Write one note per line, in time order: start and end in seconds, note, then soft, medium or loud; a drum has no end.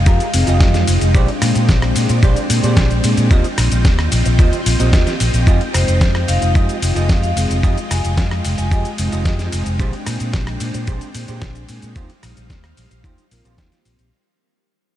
0.00 3.27 G#3 medium
0.00 1.11 F4 medium
0.00 1.11 D#5 medium
0.00 0.55 F5 medium
0.00 1.11 G5 medium
0.06 0.18 F2 loud
0.06 0.27 F4 medium
0.06 0.27 G4 medium
0.06 0.27 G#4 medium
0.06 0.27 A#4 loud
0.06 kick loud
0.06 closed hi-hat medium
0.06 ride medium
0.06 shaker soft
0.20 closed hi-hat soft
0.20 shaker soft
0.33 0.45 F1 loud
0.33 0.71 G#3 loud
0.33 0.71 C4 medium
0.33 0.71 D#4 medium
0.33 open hi-hat loud
0.33 ride medium
0.33 shaker medium
0.47 0.58 F1 medium
0.47 0.81 F4 medium
0.47 0.81 G4 medium
0.47 0.81 G#4 medium
0.47 0.81 D#5 loud
0.47 closed hi-hat soft
0.47 shaker soft
0.60 0.82 F2 medium
0.60 kick loud
0.60 snare loud
0.60 closed hi-hat medium
0.60 ride medium
0.60 shaker soft
0.74 1.11 G#3 medium
0.74 1.12 C4 medium
0.74 1.12 D#4 medium
0.74 1.12 F4 medium
0.74 snare soft
0.74 closed hi-hat soft
0.74 shaker soft
0.87 0.99 F1 loud
0.87 open hi-hat loud
0.87 ride medium
0.87 shaker medium
1.01 1.12 F1 medium
1.01 closed hi-hat soft
1.01 shaker soft
1.14 1.26 A#1 loud
1.14 3.28 D4 medium
1.14 3.01 D4 medium
1.14 1.28 G4 loud
1.14 1.28 G#4 loud
1.14 3.28 C5 medium
1.14 1.28 C5 loud
1.14 1.29 D5 loud
1.14 11.91 G5 medium
1.14 kick loud
1.14 closed hi-hat medium
1.14 ride medium
1.14 shaker soft
1.28 closed hi-hat soft
1.42 1.53 A#2 loud
1.42 muted clean electric guitar stroke soft
1.42 cross-stick medium
1.42 open hi-hat loud
1.42 ride medium
1.42 shaker medium
1.55 1.66 A#2 medium
1.55 closed hi-hat soft
1.55 shaker soft
1.69 1.91 A#1 medium
1.69 kick loud
1.69 snare loud
1.69 closed hi-hat medium
1.69 ride medium
1.69 shaker soft
1.82 cross-stick medium
1.82 closed hi-hat soft
1.96 2.07 A#2 medium
1.96 open hi-hat loud
1.96 ride medium
1.96 shaker medium
2.09 2.20 A#2 medium
2.09 muted clean electric guitar stroke medium
2.09 closed hi-hat soft
2.09 shaker soft
2.23 2.34 A#1 loud
2.23 2.43 G4 medium
2.23 2.43 G#4 medium
2.23 2.43 C5 medium
2.23 2.44 D5 loud
2.23 kick loud
2.23 closed hi-hat medium
2.23 ride medium
2.23 shaker soft
2.36 closed hi-hat soft
2.36 shaker soft
2.50 2.61 A#2 loud
2.50 open hi-hat loud
2.50 ride medium
2.50 shaker medium
2.63 2.74 A#2 medium
2.63 2.97 G4 medium
2.63 2.97 G#4 medium
2.63 2.98 C5 medium
2.63 2.98 D5 loud
2.63 closed hi-hat soft
2.63 shaker soft
2.77 2.99 A#1 medium
2.77 kick loud
2.77 snare loud
2.77 closed hi-hat medium
2.77 ride medium
2.77 shaker soft
2.91 closed hi-hat soft
2.91 shaker soft
3.03 3.15 A#2 loud
3.03 3.27 G#3 medium
3.03 3.28 C4 medium
3.03 3.28 D4 medium
3.03 3.28 G#4 loud
3.03 open hi-hat loud
3.03 ride medium
3.03 shaker medium
3.17 3.28 A#2 loud
3.17 closed hi-hat soft
3.17 shaker soft
3.31 3.42 D#2 loud
3.31 3.46 C4 medium
3.31 5.45 C4 medium
3.31 3.45 F4 loud
3.31 5.45 F4 medium
3.31 3.47 G4 medium
3.31 3.45 G4 loud
3.31 3.45 C5 loud
3.31 9.76 D#5 medium
3.31 3.45 D#5 loud
3.31 kick loud
3.31 closed hi-hat medium
3.31 ride medium
3.31 shaker soft
3.44 closed hi-hat soft
3.44 shaker soft
3.58 3.69 A#1 loud
3.58 muted clean electric guitar stroke soft
3.58 cross-stick medium
3.58 open hi-hat loud
3.58 ride medium
3.58 shaker medium
3.72 3.83 A#1 medium
3.72 closed hi-hat soft
3.72 shaker soft
3.85 4.07 D#2 medium
3.85 kick loud
3.85 snare loud
3.85 closed hi-hat medium
3.85 ride medium
3.85 shaker soft
3.99 cross-stick medium
3.99 closed hi-hat soft
4.12 4.23 A#1 medium
4.12 open hi-hat loud
4.12 ride medium
4.12 shaker medium
4.25 4.37 A#1 medium
4.25 muted clean electric guitar stroke medium
4.25 closed hi-hat soft
4.25 shaker soft
4.39 4.50 D#2 medium
4.39 4.59 F4 medium
4.39 4.59 G4 medium
4.39 4.59 C5 medium
4.39 4.60 D#5 loud
4.39 kick loud
4.39 closed hi-hat medium
4.39 ride medium
4.39 shaker soft
4.53 closed hi-hat soft
4.53 shaker soft
4.66 4.77 A#1 medium
4.66 open hi-hat loud
4.66 ride medium
4.66 shaker medium
4.78 4.91 A#1 medium
4.78 5.43 A#3 medium
4.78 5.44 C4 medium
4.78 5.13 F4 medium
4.78 5.44 F4 medium
4.78 5.13 G4 medium
4.78 5.44 G4 loud
4.78 5.14 C5 medium
4.78 5.14 D#5 loud
4.78 closed hi-hat soft
4.78 shaker soft
4.93 5.04 D#2 medium
4.93 kick loud
4.93 snare loud
4.93 closed hi-hat medium
4.93 ride medium
4.93 shaker soft
5.07 snare soft
5.07 closed hi-hat soft
5.07 shaker soft
5.20 5.31 A#1 medium
5.20 open hi-hat loud
5.20 ride medium
5.20 shaker medium
5.34 5.45 A#1 medium
5.34 closed hi-hat soft
5.34 shaker soft
5.46 5.58 F2 loud
5.46 7.33 G#3 medium
5.46 11.92 G#3 medium
5.46 7.33 C4 medium
5.46 9.75 F4 medium
5.46 5.61 F4 loud
5.46 5.61 G4 loud
5.46 5.61 G#4 loud
5.46 5.61 D#5 loud
5.46 7.34 G5 medium
5.46 kick loud
5.46 closed hi-hat medium
5.46 ride medium
5.46 shaker soft
5.61 closed hi-hat soft
5.74 5.85 F1 loud
5.74 5.83 C5 medium
5.74 muted clean electric guitar stroke soft
5.74 cross-stick medium
5.74 open hi-hat loud
5.74 ride medium
5.74 shaker medium
5.87 5.99 F1 medium
5.87 5.96 C5 medium
5.87 closed hi-hat soft
5.87 shaker soft
6.01 6.23 F2 medium
6.01 kick loud
6.01 snare loud
6.01 closed hi-hat medium
6.01 ride medium
6.01 shaker soft
6.15 cross-stick medium
6.15 closed hi-hat soft
6.28 6.39 F1 medium
6.28 6.48 F5 medium
6.28 open hi-hat medium
6.28 ride medium
6.28 shaker medium
6.41 6.53 F1 medium
6.41 muted clean electric guitar stroke medium
6.41 closed hi-hat soft
6.41 shaker soft
6.54 6.66 F2 loud
6.54 6.75 F4 medium
6.54 6.76 G4 medium
6.54 6.76 G#4 medium
6.54 6.76 D#5 loud
6.54 kick loud
6.54 closed hi-hat medium
6.54 ride medium
6.54 shaker soft
6.69 closed hi-hat soft
6.69 shaker soft
6.82 6.93 F1 loud
6.82 open hi-hat loud
6.82 ride medium
6.82 shaker medium
6.95 7.07 F1 medium
6.95 7.29 F4 medium
6.95 7.30 G4 medium
6.95 7.30 G#4 medium
6.95 7.30 D#5 loud
6.95 closed hi-hat soft
6.95 shaker soft
7.09 7.31 F2 medium
7.09 kick loud
7.09 snare loud
7.09 closed hi-hat medium
7.09 ride medium
7.09 shaker soft
7.23 7.33 F5 medium
7.23 closed hi-hat soft
7.23 shaker soft
7.36 7.47 F1 medium
7.36 7.60 G#3 loud
7.36 7.60 C4 medium
7.36 7.60 D#4 medium
7.36 7.61 G#4 loud
7.36 open hi-hat medium
7.36 ride medium
7.36 shaker medium
7.50 7.61 F1 medium
7.50 closed hi-hat soft
7.50 shaker soft
7.63 7.74 F2 loud
7.63 7.77 F4 loud
7.63 7.77 G4 loud
7.63 7.77 G#4 loud
7.63 7.77 D#5 loud
7.63 kick loud
7.63 closed hi-hat medium
7.63 ride medium
7.63 shaker soft
7.77 closed hi-hat soft
7.77 shaker soft
7.90 8.02 F1 medium
7.90 7.99 G#5 medium
7.90 muted clean electric guitar stroke soft
7.90 cross-stick medium
7.90 open hi-hat loud
7.90 ride medium
7.90 shaker medium
8.04 8.15 F1 medium
8.04 8.13 G#5 medium
8.04 closed hi-hat soft
8.04 shaker soft
8.17 8.39 F2 medium
8.17 kick loud
8.17 snare loud
8.17 closed hi-hat medium
8.17 ride medium
8.17 shaker soft
8.31 cross-stick medium
8.31 closed hi-hat soft
8.45 8.56 F1 medium
8.45 open hi-hat medium
8.45 ride medium
8.45 shaker medium
8.58 8.69 F1 medium
8.58 8.67 G#5 medium
8.58 muted clean electric guitar stroke medium
8.58 closed hi-hat soft
8.58 shaker soft
8.71 8.82 F2 loud
8.71 8.92 F4 medium
8.71 8.92 G4 medium
8.71 8.92 G#4 medium
8.71 8.92 D#5 loud
8.71 8.80 G#5 medium
8.71 kick loud
8.71 closed hi-hat medium
8.71 ride medium
8.71 shaker soft
8.85 closed hi-hat soft
8.85 shaker soft
8.98 9.10 F1 medium
8.98 9.36 G#3 medium
8.98 9.36 C4 medium
8.98 9.36 D#4 medium
8.98 open hi-hat loud
8.98 ride medium
8.98 shaker medium
9.12 9.23 F1 medium
9.12 9.46 F4 medium
9.12 9.46 G4 medium
9.12 9.46 G#4 medium
9.12 9.46 D#5 loud
9.12 closed hi-hat soft
9.12 shaker soft
9.26 9.47 F2 medium
9.26 kick loud
9.26 snare loud
9.26 closed hi-hat medium
9.26 ride medium
9.26 shaker soft
9.38 9.76 G#3 medium
9.38 9.76 C4 medium
9.38 9.76 D#4 medium
9.38 9.77 F4 medium
9.38 snare soft
9.38 closed hi-hat soft
9.38 shaker soft
9.53 9.64 F1 loud
9.53 open hi-hat medium
9.53 ride medium
9.53 shaker medium
9.66 9.77 F1 loud
9.66 closed hi-hat soft
9.66 shaker soft
9.79 9.91 A#1 loud
9.79 11.65 G#3 medium
9.79 11.65 C4 medium
9.79 9.93 D4 loud
9.79 11.94 D4 medium
9.79 11.66 D4 medium
9.79 9.93 G4 loud
9.79 9.93 G#4 loud
9.79 11.94 C5 medium
9.79 9.93 C5 loud
9.79 11.66 G5 medium
9.79 kick loud
9.79 closed hi-hat medium
9.79 ride medium
9.79 shaker medium
9.93 closed hi-hat soft
10.06 10.18 A#2 loud
10.06 muted clean electric guitar stroke soft
10.06 cross-stick medium
10.06 open hi-hat loud
10.06 ride medium
10.06 shaker medium
10.20 10.31 A#2 medium
10.20 closed hi-hat soft
10.20 shaker soft
10.33 10.56 A#1 medium
10.33 kick loud
10.33 snare loud
10.33 closed hi-hat medium
10.33 ride medium
10.33 shaker soft
10.47 cross-stick medium
10.47 closed hi-hat soft
10.60 10.72 A#2 medium
10.60 open hi-hat medium
10.60 ride medium
10.60 shaker medium
10.74 10.85 A#2 medium
10.74 muted clean electric guitar stroke medium
10.74 closed hi-hat soft
10.74 shaker soft
10.87 10.99 A#1 loud
10.87 11.08 D4 medium
10.87 11.08 G4 medium
10.87 11.08 G#4 medium
10.87 11.08 C5 loud
10.87 kick loud
10.87 closed hi-hat medium
10.87 ride medium
10.87 shaker soft
11.01 closed hi-hat soft
11.01 shaker soft
11.15 11.26 A#2 loud
11.15 open hi-hat loud
11.15 ride medium
11.15 shaker medium
11.28 11.39 A#2 medium
11.28 11.62 D4 medium
11.28 11.62 G4 medium
11.28 11.62 G#4 medium
11.28 11.62 C5 loud
11.28 closed hi-hat soft
11.28 shaker soft
11.42 11.64 A#1 medium
11.42 kick loud
11.42 snare loud
11.42 closed hi-hat medium
11.42 ride medium
11.42 shaker soft
11.55 closed hi-hat soft
11.55 shaker soft
11.69 11.80 A#2 medium
11.69 11.93 G#3 medium
11.69 11.93 C4 medium
11.69 11.93 D4 medium
11.69 11.93 G#4 loud
11.69 open hi-hat medium
11.69 ride medium
11.69 shaker medium
11.82 11.94 A#2 medium
11.82 closed hi-hat soft
11.82 shaker soft
11.95 12.07 D#2 loud
11.95 14.10 G3 medium
11.95 12.09 D#4 loud
11.95 14.10 D#4 medium
11.95 12.09 F4 loud
11.95 12.10 G4 loud
11.95 14.10 C5 medium
11.95 12.10 C5 loud
11.95 14.10 F5 medium
11.95 kick loud
11.95 closed hi-hat medium
11.95 ride medium
11.95 shaker soft
12.10 closed hi-hat soft
12.23 12.34 A#1 loud
12.23 muted clean electric guitar stroke soft
12.23 cross-stick medium
12.23 open hi-hat loud
12.23 ride medium
12.23 shaker medium
12.37 12.48 A#1 medium
12.37 closed hi-hat soft
12.37 shaker soft
12.50 12.72 D#2 medium
12.50 kick loud
12.50 snare loud
12.50 closed hi-hat medium
12.50 shaker soft
12.64 cross-stick medium
12.64 closed hi-hat soft
12.77 12.88 A#1 medium
12.77 open hi-hat medium
12.77 ride medium
12.77 shaker medium
12.91 13.02 A#1 medium
12.91 muted clean electric guitar stroke medium
12.91 closed hi-hat soft
12.91 shaker soft
13.04 13.15 D#2 loud
13.04 13.24 D#4 medium
13.04 13.24 F4 medium
13.04 13.24 G4 medium
13.04 13.25 C5 loud
13.04 kick loud
13.04 closed hi-hat medium
13.04 ride medium
13.04 shaker soft
13.18 closed hi-hat soft
13.18 shaker soft
13.31 13.42 A#1 loud
13.31 13.68 A#3 loud
13.31 13.69 C4 medium
13.31 13.69 F4 medium
13.31 13.69 A#4 loud
13.31 open hi-hat loud
13.31 ride medium
13.31 shaker medium
13.44 13.56 A#1 loud
13.44 13.78 D#4 medium
13.44 13.78 F4 medium
13.44 13.79 G4 medium
13.44 13.79 C5 loud
13.44 closed hi-hat soft
13.44 shaker soft
13.58 kick loud
13.58 snare loud
13.58 closed hi-hat medium
13.58 ride medium
13.58 shaker soft
13.72 14.09 A#3 medium
13.72 14.09 C4 medium
13.72 14.09 F4 medium
13.72 14.09 G4 medium
13.72 snare soft
13.72 closed hi-hat soft
13.72 shaker soft
13.85 13.96 A#1 medium
13.85 open hi-hat medium
13.85 ride medium
13.85 shaker medium
13.99 14.10 A#1 medium
13.99 closed hi-hat soft
13.99 shaker soft